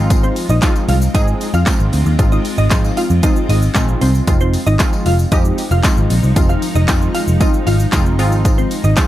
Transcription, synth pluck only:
0.23 C4 C5
0.50 D#4 D#5
0.89 F4 F5
1.15 D#4 D#5
1.54 F4 F5
2.32 D#4 D#5
2.58 D#4 D#5
2.97 F4 F5
3.23 D#4 D#5
3.49 D#4 D#5
4.01 C4 C5
4.41 C4 C5
4.67 D#4 D#5
5.06 F4 F5
5.32 D#4 D#5
5.71 F4 F5
6.49 F4 F5
6.76 D#4 D#5
7.15 F4 F5
7.41 D#4 D#5
7.67 F4 F5
8.58 C4 C5
8.84 D#4 D#5

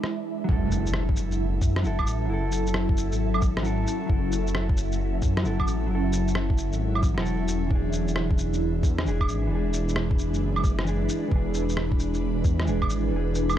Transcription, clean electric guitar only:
Already playing: E3 D4 G#4
0.44 F#3
0.49 E4 A4
1.83 F#3 E4
1.87 A4
2.25 F#3
2.30 E4 A4
3.63 F#3 E4 A4
4.06 F#3 E4
4.14 A4
5.43 F#3 E4 A4
5.87 F#3 E4
5.95 A4
7.14 F#3 E4
7.22 A4
7.67 E3
7.71 D4
7.75 G#4
9.04 E3 D4
9.08 G#4
9.47 E3 D4
9.55 G#4
10.84 E3 D4
10.89 G#4
11.28 E3 D4
11.36 G#4
12.65 E3 D4 G#4
13.08 E3 D4
13.16 G#4

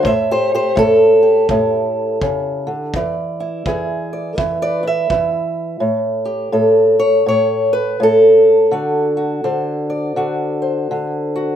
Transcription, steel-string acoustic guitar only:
0.03 A2 C5 E5
0.31 G4 C5
0.54 G4 C5
0.76 A2 A4
1.23 G4
1.50 A2 E4
2.22 C#3
2.67 D3
2.96 E3 D5
3.40 E4
3.67 E3 G#4
4.13 D5
4.36 E3 B4 E5
4.62 B4 D5
4.83 E4
4.87 E5
5.10 E3
5.80 A2
6.25 G4
6.52 A2 A4
6.99 C#5
7.26 A2 C#5
7.73 B4
8.00 A2 A4
8.71 D3 F#4
9.17 F#4
9.44 D3 C5
9.90 D5
10.16 D3 F#4
10.62 C5
10.91 D3
11.36 F#4

